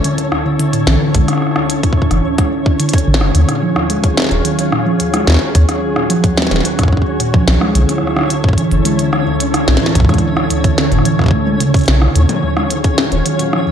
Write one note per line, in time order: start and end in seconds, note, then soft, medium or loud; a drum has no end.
0.00 3.31 D3 medium
0.00 3.34 C#4 medium
0.00 7.44 C#4 medium
0.00 3.31 E4 medium
0.00 3.31 A4 medium
0.00 3.34 C#5 medium
0.04 0.16 D3 loud
0.04 closed hi-hat medium
0.18 0.29 D3 medium
0.18 closed hi-hat soft
0.32 0.45 D2 medium
0.32 cross-stick medium
0.46 0.57 D3 medium
0.59 0.66 D3 medium
0.59 closed hi-hat medium
0.73 0.84 A2 medium
0.73 closed hi-hat soft
0.87 0.97 B1 loud
0.87 0.94 E3 loud
0.87 snare loud
1.01 1.14 D2 medium
1.15 1.25 B1 loud
1.15 1.26 G#3 medium
1.15 kick medium
1.15 closed hi-hat medium
1.28 1.40 D3 medium
1.28 cross-stick soft
1.28 closed hi-hat soft
1.33 cross-stick soft
1.38 cross-stick soft
1.42 1.53 D3 medium
1.42 cross-stick soft
1.47 cross-stick soft
1.51 cross-stick soft
1.56 1.69 D2 medium
1.56 cross-stick medium
1.70 1.81 D3 medium
1.70 closed hi-hat medium
1.83 1.90 D3 medium
1.83 kick medium
1.83 closed hi-hat soft
1.93 kick medium
1.97 2.08 A2 medium
2.02 kick medium
2.11 2.21 F#1 medium
2.11 2.18 E3 loud
2.11 cross-stick soft
2.11 closed hi-hat soft
2.25 2.38 D2 medium
2.38 2.50 G#3 medium
2.38 kick medium
2.38 cross-stick medium
2.38 closed hi-hat soft
2.52 2.63 D4 medium
2.66 2.77 D4 medium
2.66 kick medium
2.80 2.91 D3 loud
2.80 closed hi-hat medium
2.89 closed hi-hat medium
2.93 3.05 D4 medium
2.93 kick loud
2.93 closed hi-hat medium
2.98 closed hi-hat soft
3.07 3.23 A1 medium
3.07 3.18 D3 loud
3.14 snare loud
3.21 3.31 F#1 medium
3.21 3.32 A3 medium
3.21 cross-stick medium
3.35 3.45 D#2 loud
3.35 3.42 D#3 medium
3.35 7.44 F#3 medium
3.35 13.72 C#4 medium
3.35 5.53 F4 medium
3.35 7.44 G#4 medium
3.35 13.72 C#5 medium
3.35 closed hi-hat medium
3.49 3.60 A#2 medium
3.49 cross-stick soft
3.49 closed hi-hat soft
3.62 3.69 F3 loud
3.76 3.89 D#2 medium
3.76 cross-stick medium
3.90 4.01 G#3 medium
3.90 closed hi-hat medium
4.04 4.15 D#3 loud
4.04 kick medium
4.04 closed hi-hat medium
4.17 4.29 D#3 medium
4.17 snare loud
4.20 snare medium
4.22 snare medium
4.24 snare medium
4.27 snare soft
4.29 4.41 D#1 medium
4.29 4.44 D#2 medium
4.29 snare soft
4.29 closed hi-hat soft
4.45 4.56 D#3 medium
4.45 closed hi-hat medium
4.59 4.65 D#3 medium
4.59 closed hi-hat medium
4.72 4.84 A#2 medium
4.72 cross-stick medium
4.86 4.93 F3 medium
5.00 5.13 D#2 medium
5.00 closed hi-hat medium
5.14 5.25 G#3 medium
5.14 cross-stick medium
5.14 closed hi-hat medium
5.27 5.38 D#2 loud
5.27 5.39 D#3 loud
5.27 snare loud
5.30 snare medium
5.32 snare medium
5.34 snare medium
5.37 snare soft
5.39 5.52 D#3 medium
5.39 snare soft
5.55 5.65 D#2 loud
5.55 5.68 D#2 medium
5.55 7.46 F#4 medium
5.55 kick medium
5.55 closed hi-hat medium
5.69 5.80 D#3 medium
5.69 cross-stick soft
5.69 closed hi-hat medium
5.83 5.89 D#3 medium
5.96 6.07 A#2 medium
5.96 cross-stick medium
6.10 6.17 F3 loud
6.10 closed hi-hat medium
6.24 6.37 D#2 medium
6.24 kick medium
6.24 closed hi-hat medium
6.38 6.49 G#3 medium
6.38 snare loud
6.42 snare medium
6.47 snare medium
6.51 6.61 D#1 medium
6.51 6.62 D#3 loud
6.51 snare medium
6.51 closed hi-hat soft
6.56 snare medium
6.60 snare soft
6.65 6.76 D#3 medium
6.65 closed hi-hat medium
6.79 6.92 D#2 medium
6.79 kick medium
6.79 cross-stick soft
6.79 closed hi-hat soft
6.83 kick medium
6.88 kick medium
6.93 7.04 D#3 medium
6.93 kick soft
6.97 kick soft
7.02 kick soft
7.06 7.13 D#3 medium
7.20 7.31 A#2 medium
7.20 closed hi-hat medium
7.34 7.41 F3 loud
7.34 kick loud
7.47 7.58 B1 loud
7.47 7.61 D2 medium
7.47 12.12 D3 medium
7.47 13.72 C#4 medium
7.47 12.12 E4 medium
7.47 12.12 A4 medium
7.47 snare loud
7.61 7.73 G#3 medium
7.61 cross-stick medium
7.75 7.85 B1 loud
7.75 7.86 D3 loud
7.75 closed hi-hat medium
7.89 8.00 D3 medium
7.89 cross-stick soft
7.89 closed hi-hat soft
7.98 cross-stick soft
8.03 8.16 D2 medium
8.07 cross-stick soft
8.17 8.28 D3 medium
8.17 cross-stick medium
8.19 cross-stick medium
8.21 cross-stick soft
8.23 cross-stick soft
8.26 cross-stick soft
8.28 8.37 D3 medium
8.28 cross-stick soft
8.28 closed hi-hat medium
8.44 8.55 A2 medium
8.44 kick medium
8.49 kick medium
8.53 kick medium
8.58 8.64 E3 loud
8.58 closed hi-hat soft
8.71 8.82 F#1 medium
8.71 8.85 D2 medium
8.71 closed hi-hat soft
8.85 8.96 G#3 medium
8.85 closed hi-hat medium
8.99 9.10 D3 medium
8.99 closed hi-hat soft
9.13 9.24 D3 medium
9.13 cross-stick medium
9.27 9.40 D2 medium
9.40 9.51 D3 medium
9.40 closed hi-hat medium
9.54 9.61 D3 medium
9.54 cross-stick medium
9.54 closed hi-hat medium
9.68 9.78 B1 loud
9.68 9.79 A2 medium
9.68 snare loud
9.77 snare medium
9.82 9.88 E3 loud
9.86 snare medium
9.95 10.05 B1 medium
9.95 10.08 D2 medium
9.95 kick medium
9.95 closed hi-hat medium
10.00 kick medium
10.05 kick medium
10.09 10.20 G#3 medium
10.09 kick soft
10.09 cross-stick soft
10.09 closed hi-hat soft
10.14 kick soft
10.14 closed hi-hat soft
10.18 kick soft
10.18 closed hi-hat soft
10.23 10.34 D3 loud
10.37 10.48 D3 medium
10.37 cross-stick medium
10.50 10.64 D2 medium
10.50 closed hi-hat medium
10.64 10.75 D3 medium
10.64 kick medium
10.64 closed hi-hat medium
10.78 10.85 D3 medium
10.78 snare loud
10.92 11.02 F#1 medium
10.92 11.03 A2 medium
10.92 closed hi-hat soft
10.99 cross-stick soft
11.05 11.12 E3 loud
11.05 closed hi-hat medium
11.19 11.32 D2 medium
11.19 kick soft
11.19 cross-stick soft
11.22 kick soft
11.24 kick soft
11.26 kick medium
11.28 kick medium
11.31 11.44 A3 medium
11.31 kick medium
11.47 11.58 G#3 loud
11.60 11.72 C#3 loud
11.60 closed hi-hat medium
11.74 11.85 D3 medium
11.74 kick loud
11.74 closed hi-hat soft
11.77 closed hi-hat soft
11.79 closed hi-hat soft
11.81 closed hi-hat soft
11.83 closed hi-hat soft
11.86 12.08 B1 medium
11.86 11.99 C#3 medium
11.86 snare loud
11.86 closed hi-hat soft
12.02 12.09 D3 loud
12.02 cross-stick medium
12.16 12.26 D#2 loud
12.16 12.27 A#2 medium
12.16 13.72 F#3 medium
12.16 13.72 F4 medium
12.16 13.72 G#4 medium
12.16 closed hi-hat medium
12.29 12.36 F3 loud
12.29 closed hi-hat soft
12.29 high tom medium
12.43 12.56 D#2 medium
12.57 12.68 G#3 medium
12.57 cross-stick medium
12.70 12.82 D#3 loud
12.70 closed hi-hat medium
12.84 12.96 D#3 medium
12.84 kick medium
12.84 closed hi-hat soft
12.98 13.05 A#2 medium
12.98 snare loud
13.12 13.22 D#1 medium
13.12 13.23 D#3 medium
13.12 closed hi-hat soft
13.26 13.32 D#3 medium
13.26 closed hi-hat medium
13.39 13.51 A#2 medium
13.39 closed hi-hat soft
13.53 13.60 F3 medium
13.53 cross-stick medium
13.67 13.72 D#2 medium